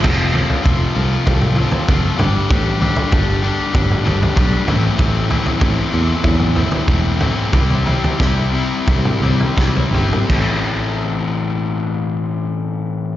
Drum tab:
CC |x---------------|----------------|----------------|----------------|
SD |----------------|----------------|----------------|----o-------o---|
T2 |---------o----o-|---------o----o-|---------o----o-|---------o-----o|
FT |o-oo----o-oo--o-|o-oo----o-oo--o-|o-oo----o-oo--o-|oooo----o-oo-oo-|
BD |o---o---o---o---|o---o---o---o---|o---o---o---o---|o---o---o---o---|

CC |x---------------|
SD |----------------|
T2 |----------------|
FT |----------------|
BD |o---------------|